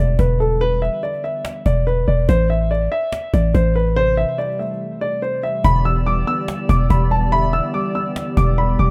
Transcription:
0.00 0.18 E1 loud
0.00 2.30 D3 medium
0.00 0.19 E3 medium
0.00 0.39 G3 medium
0.00 0.61 B3 medium
0.00 0.17 D5 medium
0.19 0.90 E1 loud
0.19 0.38 B4 medium
0.19 cajon bass loud
0.40 0.61 G3 medium
0.40 0.59 A4 medium
0.40 cajon slap soft
0.46 cajon slap soft
0.51 cajon slap soft
0.56 cajon slap soft
0.61 0.80 B4 loud
0.61 cajon slap soft
0.82 1.01 E5 medium
0.82 cajon slap soft
1.03 1.22 D5 medium
1.03 cajon slap soft
1.14 cajon slap soft
1.24 1.63 E5 medium
1.24 cajon slap soft
1.45 cajon slap loud
1.66 2.06 E1 loud
1.66 1.85 D5 medium
1.66 cajon bass loud
1.87 2.06 B4 medium
1.87 cajon slap soft
2.08 2.28 E1 loud
2.08 2.27 D5 medium
2.08 cajon slap soft
2.29 2.89 A1 loud
2.29 2.48 C5 loud
2.29 cajon bass loud
2.49 2.69 E5 medium
2.49 cajon slap soft
2.71 2.90 D5 medium
2.71 cajon slap soft
2.92 3.31 E5 medium
2.92 cajon slap soft
3.12 cajon slap loud
3.34 3.54 A1 loud
3.34 3.52 D5 medium
3.34 cajon bass loud
3.54 4.26 A1 loud
3.54 3.73 C5 medium
3.54 cajon bass loud
3.76 3.94 B4 medium
3.76 cajon slap soft
3.81 cajon slap soft
3.87 cajon slap soft
3.92 cajon slap soft
3.96 5.00 C3 loud
3.96 4.15 C5 loud
3.96 cajon slap soft
4.17 5.22 E3 medium
4.17 4.36 E5 medium
4.17 cajon slap soft
4.38 5.42 G3 medium
4.38 4.57 D5 medium
4.38 cajon slap soft
4.45 cajon slap soft
4.52 cajon slap soft
4.59 5.64 A3 medium
4.59 4.99 E5 medium
4.59 cajon slap soft
4.66 cajon slap soft
4.74 cajon slap soft
5.01 5.64 C3 medium
5.01 5.20 D5 medium
5.22 5.41 C5 medium
5.43 5.64 G3 medium
5.43 5.62 E5 medium
5.64 6.25 E1 loud
5.64 6.67 D3 loud
5.64 8.90 E3 medium
5.64 8.90 B3 medium
5.64 8.90 G4 medium
5.64 8.90 D5 medium
5.64 5.83 B5 loud
5.64 cajon bass loud
5.85 6.90 E3 medium
5.85 6.04 E6 medium
5.85 cajon slap soft
6.06 7.10 G3 medium
6.06 6.25 D6 medium
6.06 cajon slap soft
6.27 7.32 B3 medium
6.27 6.67 E6 medium
6.27 cajon slap soft
6.48 cajon slap loud
6.69 6.89 E1 loud
6.69 7.31 D3 medium
6.69 6.88 D6 medium
6.69 cajon bass loud
6.90 7.61 E1 loud
6.90 7.09 B5 medium
6.90 cajon bass loud
7.11 7.73 G3 medium
7.11 7.30 A5 medium
7.11 cajon slap soft
7.17 cajon slap soft
7.22 cajon slap soft
7.27 cajon slap soft
7.32 8.36 D3 loud
7.32 7.72 E5 loud
7.32 7.51 B5 loud
7.32 cajon slap soft
7.53 8.58 E3 medium
7.53 7.72 E6 medium
7.53 cajon slap soft
7.74 8.78 G3 loud
7.74 7.93 D6 medium
7.74 cajon slap soft
7.85 cajon slap soft
7.95 8.90 B3 medium
7.95 8.35 E6 medium
7.95 cajon slap soft
8.16 cajon slap loud
8.37 8.77 E1 loud
8.37 8.90 D3 medium
8.37 8.90 D5 medium
8.37 8.56 D6 medium
8.37 cajon bass loud
8.58 8.77 B5 medium
8.58 cajon slap soft
8.79 8.90 E1 loud
8.79 8.90 G3 medium
8.79 8.90 D6 medium
8.79 cajon slap soft

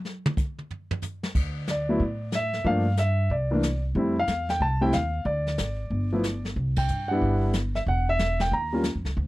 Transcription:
0.05 snare soft
0.26 mid tom loud
0.37 kick medium
0.37 hi-hat pedal medium
0.59 mid tom soft
0.71 floor tom medium
0.91 floor tom loud
1.02 floor tom medium
1.02 hi-hat pedal medium
1.23 snare medium
1.35 1.97 D2 medium
1.35 brush sweep soft
1.35 kick medium
1.35 crash medium
1.67 2.36 D5 medium
1.67 snare medium
1.67 hi-hat pedal medium
1.89 2.00 F#3 medium
1.89 2.00 A3 medium
1.89 2.00 B3 medium
1.89 2.00 E4 medium
2.00 2.62 A2 medium
2.00 brush sweep soft
2.00 kick soft
2.32 2.65 E5 medium
2.32 snare medium
2.32 hi-hat pedal medium
2.53 snare soft
2.64 3.27 G2 medium
2.64 2.84 F3 medium
2.64 2.85 A3 medium
2.64 2.84 A#3 medium
2.64 2.85 D4 medium
2.64 3.00 F5 medium
2.64 brush sweep soft
2.64 kick soft
2.97 3.32 E5 medium
2.97 snare medium
2.97 hi-hat pedal medium
3.30 3.92 C2 medium
3.30 3.81 D5 medium
3.30 brush sweep soft
3.30 kick soft
3.51 3.62 E3 medium
3.51 3.62 A3 medium
3.51 3.62 A#3 medium
3.51 3.63 D4 medium
3.63 snare medium
3.63 hi-hat pedal medium
3.95 4.26 F2 medium
3.95 4.15 G3 medium
3.95 4.15 A3 medium
3.95 4.15 C4 medium
3.95 4.16 E4 medium
3.95 brush sweep soft
3.95 kick soft
4.19 4.49 F5 loud
4.27 4.58 E2 medium
4.27 snare medium
4.27 hi-hat pedal medium
4.49 4.62 G5 medium
4.49 snare soft
4.60 4.91 C2 medium
4.60 4.83 A5 medium
4.60 brush sweep soft
4.60 kick soft
4.81 4.92 G3 medium
4.81 4.92 A3 medium
4.81 4.92 C4 medium
4.81 4.93 E4 medium
4.81 4.94 G5 medium
4.92 5.24 D#2 medium
4.92 5.24 F5 medium
4.92 snare medium
4.92 hi-hat pedal medium
5.25 5.56 D2 medium
5.25 6.41 D5 medium
5.25 brush sweep soft
5.25 kick soft
5.47 snare soft
5.58 5.89 G#1 medium
5.58 snare medium
5.58 hi-hat pedal medium
5.90 6.53 G1 medium
5.90 brush sweep soft
5.90 kick soft
6.12 6.23 F3 medium
6.12 6.23 A3 soft
6.12 6.24 B3 medium
6.12 6.24 E4 medium
6.23 snare medium
6.23 hi-hat pedal medium
6.45 snare soft
6.56 6.87 C2 medium
6.56 brush sweep soft
6.56 kick soft
6.76 7.08 G5 medium
6.76 kick medium
6.76 ride medium
6.88 7.20 G2 medium
6.88 hi-hat pedal soft
7.08 7.53 G3 medium
7.08 7.53 B3 medium
7.08 7.53 D4 medium
7.08 7.50 F#5 medium
7.13 7.53 E4 medium
7.21 7.84 G1 medium
7.21 brush sweep soft
7.21 kick soft
7.53 snare medium
7.53 hi-hat pedal medium
7.75 7.80 E5 medium
7.75 snare soft
7.86 8.49 E1 medium
7.86 8.07 F#5 medium
7.86 brush sweep soft
7.86 kick soft
8.09 8.39 E5 loud
8.19 snare medium
8.19 hi-hat pedal soft
8.40 8.53 G5 medium
8.40 snare medium
8.51 8.92 D#2 medium
8.51 8.83 A#5 medium
8.51 brush sweep soft
8.51 kick soft
8.73 8.83 G3 medium
8.73 8.84 A#3 medium
8.73 8.84 C#4 soft
8.73 8.84 F4 medium
8.83 snare medium
8.83 hi-hat pedal medium
8.95 9.04 F2 medium
9.05 9.16 C#2 medium
9.05 snare soft
9.17 9.27 D2 medium
9.17 brush sweep soft
9.17 kick soft

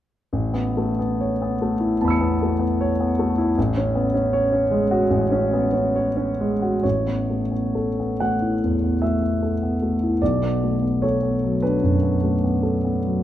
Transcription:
0.33 1.97 A1 soft
0.54 0.89 B3 soft
0.77 0.99 A3 soft
0.99 1.33 B3 soft
1.21 1.53 C#5 soft
1.42 1.74 B3 soft
1.62 1.93 A3 soft
1.80 2.12 E4 soft
2.01 2.33 E2 soft
2.01 3.53 A5 soft
2.01 3.55 B5 soft
2.08 3.56 E6 soft
2.08 3.57 C#7 soft
2.21 2.53 B3 soft
2.42 2.61 A3 soft
2.59 2.91 B3 soft
2.81 3.11 C#5 soft
3.00 3.31 B3 soft
3.19 3.49 A3 soft
3.38 3.57 E4 soft
3.58 5.06 A1 soft
3.77 4.06 C#4 soft
3.95 4.13 B3 soft
4.14 4.43 C#4 soft
4.33 4.63 C#5 soft
4.52 4.82 C#4 soft
4.71 5.02 G#3 soft
4.91 5.23 F#4 soft
5.10 6.80 A1 soft
5.32 5.65 C#4 soft
5.53 5.74 B3 soft
5.73 6.08 C#4 soft
5.96 6.31 C#5 soft
6.17 6.53 C#4 soft
6.41 6.76 G#3 soft
6.62 6.84 F#4 soft
6.83 8.58 A1 soft
6.83 8.19 C#5 medium
7.07 7.41 B3 soft
7.30 7.51 A3 soft
7.51 7.88 B3 soft
7.75 8.11 A4 soft
8.00 8.34 B3 soft
8.20 8.54 A3 soft
8.20 9.02 F#5 medium
8.42 8.74 E4 soft
8.63 8.95 E2 soft
8.84 9.14 B3 soft
9.02 9.22 A3 soft
9.02 10.21 E5 soft
9.22 9.54 B3 soft
9.42 9.74 A4 soft
9.63 9.94 B3 soft
9.82 10.13 A3 soft
10.03 10.22 E4 soft
10.22 11.79 B1 soft
10.22 11.02 D5 medium
10.43 10.74 B3 soft
10.64 10.82 A3 soft
10.82 11.14 B3 soft
11.02 11.35 A4 soft
11.02 11.63 C#5 medium
11.23 11.55 B3 soft
11.43 11.75 F#3 soft
11.63 11.94 D4 soft
11.63 13.23 B4 medium
11.83 12.14 F#2 soft
12.03 12.34 B3 soft
12.24 12.43 A3 soft
12.44 12.76 B3 soft
12.63 12.98 A4 soft
12.85 13.21 B3 soft
13.06 13.23 F#3 soft

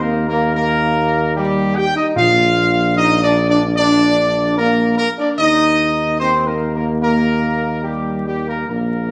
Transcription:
0.00 1.99 D#2 medium
0.00 0.13 A#3 medium
0.00 0.27 A#3 medium
0.00 0.27 A#4 medium
0.28 0.53 A#3 loud
0.28 0.54 A#3 loud
0.28 0.53 A#4 medium
0.54 1.32 A#3 medium
0.54 1.32 A#3 loud
0.54 1.31 A#4 loud
1.36 1.73 G3 medium
1.36 1.76 G3 medium
1.36 1.73 G4 loud
1.75 1.85 G4 medium
1.75 1.96 G5 loud
1.95 2.14 D#4 medium
1.95 2.15 D#4 medium
1.95 2.05 D#5 loud
2.15 5.07 A#1 loud
2.15 3.33 A#2 medium
2.15 2.93 F4 loud
2.15 2.92 F5 loud
2.96 3.22 D#4 loud
2.96 3.10 D#4 loud
2.96 3.22 D#5 loud
3.23 3.36 D4 loud
3.23 3.48 D5 loud
3.50 3.63 D4 medium
3.50 3.62 D5 loud
3.76 4.54 D4 loud
3.76 4.55 D4 loud
3.76 4.53 D5 loud
4.58 4.98 A#3 loud
4.58 4.96 A#3 medium
4.58 4.95 A#4 loud
4.97 5.08 A#3 medium
4.97 5.07 A#4 loud
5.18 5.37 D4 medium
5.18 5.29 D4 medium
5.18 5.28 D5 medium
5.38 8.65 D#2 medium
5.38 6.16 D#4 medium
5.38 6.16 D#4 loud
5.38 6.15 D#5 loud
6.19 6.32 C4 loud
6.19 6.46 C4 loud
6.19 6.45 C5 loud
6.46 6.72 A#3 medium
6.46 6.60 A#3 medium
6.46 6.72 A#4 medium
6.73 7.00 A#3 medium
6.73 6.87 A#3 medium
6.73 6.86 A#4 medium
7.01 7.80 A#3 medium
7.01 7.80 A#4 loud
7.83 8.23 G3 medium
7.83 8.25 G3 medium
7.83 8.23 G4 medium
8.25 8.35 G3 medium
8.25 8.36 G3 medium
8.25 8.46 G4 medium
8.46 8.56 A#3 medium
8.46 8.67 A#3 medium
8.46 8.67 A#4 medium
8.69 9.11 A#1 medium
8.69 9.11 A#3 medium
8.69 9.11 A#4 medium

